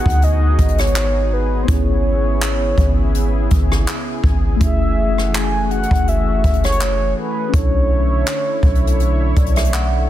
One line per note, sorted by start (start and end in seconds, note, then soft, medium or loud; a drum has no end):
0.00 1.62 B3 medium
0.00 4.57 B3 medium
0.00 1.64 D#4 medium
0.00 1.66 D#4 medium
0.00 1.65 F#4 medium
0.00 1.66 F#4 medium
0.00 1.67 G#4 medium
0.00 7.50 G#4 medium
0.00 0.25 F#5 loud
0.06 0.57 D2 loud
0.06 kick medium
0.06 closed hi-hat medium
0.22 0.81 D#5 loud
0.22 closed hi-hat medium
0.59 1.64 G#1 loud
0.59 kick medium
0.59 closed hi-hat medium
0.68 closed hi-hat medium
0.78 1.35 C#5 loud
0.78 cross-stick medium
0.78 closed hi-hat medium
0.87 closed hi-hat medium
0.95 clap loud
0.95 closed hi-hat medium
1.33 1.64 B4 loud
1.63 4.55 B3 medium
1.63 1.71 C5 medium
1.67 2.74 G#1 loud
1.67 4.58 C#3 medium
1.67 4.57 C#4 medium
1.67 4.58 E4 medium
1.67 3.88 C#5 loud
1.67 kick loud
1.67 closed hi-hat medium
1.74 4.60 G#4 medium
2.41 clap loud
2.41 closed hi-hat medium
2.78 3.48 G#1 loud
2.78 kick medium
2.78 closed hi-hat medium
3.15 closed hi-hat medium
3.51 3.86 G#1 loud
3.51 kick loud
3.51 closed hi-hat medium
3.72 cross-stick loud
3.87 clap loud
3.87 closed hi-hat medium
4.24 4.59 G#1 loud
4.24 kick medium
4.56 7.47 A3 medium
4.56 7.48 C#4 medium
4.61 5.86 F#1 loud
4.61 7.51 E3 medium
4.61 10.10 A3 medium
4.61 7.51 E4 medium
4.61 7.50 F#4 medium
4.61 5.37 E5 loud
4.61 kick loud
4.61 closed hi-hat medium
4.66 7.52 G#4 medium
5.18 cross-stick medium
5.34 5.71 G#5 loud
5.34 clap loud
5.34 closed hi-hat medium
5.71 6.10 F#5 loud
5.71 closed hi-hat soft
5.83 closed hi-hat medium
5.91 6.42 F#1 loud
5.91 kick medium
5.95 closed hi-hat medium
6.08 6.64 E5 loud
6.08 closed hi-hat medium
6.44 7.14 F#1 loud
6.44 kick medium
6.44 closed hi-hat medium
6.54 closed hi-hat medium
6.64 7.14 C#5 loud
6.64 cross-stick loud
6.64 closed hi-hat medium
6.72 closed hi-hat medium
6.81 clap loud
6.81 closed hi-hat medium
7.19 7.57 B4 medium
7.49 10.10 D3 medium
7.49 10.10 C#4 medium
7.49 10.10 D4 medium
7.49 10.10 E4 medium
7.49 10.10 C#5 medium
7.54 8.24 B1 loud
7.54 10.10 E4 medium
7.54 9.74 C#5 loud
7.54 kick loud
7.54 closed hi-hat medium
7.58 10.10 A4 medium
8.26 clap loud
8.26 closed hi-hat medium
8.63 9.34 B1 medium
8.63 kick medium
8.63 closed hi-hat soft
8.75 closed hi-hat soft
8.87 closed hi-hat medium
9.00 closed hi-hat medium
9.36 10.07 B1 loud
9.36 9.55 D5 medium
9.36 kick loud
9.36 closed hi-hat medium
9.46 closed hi-hat medium
9.56 9.72 E5 medium
9.56 cross-stick loud
9.56 closed hi-hat medium
9.65 closed hi-hat medium
9.73 10.08 F#5 medium
9.73 clap loud
9.73 closed hi-hat medium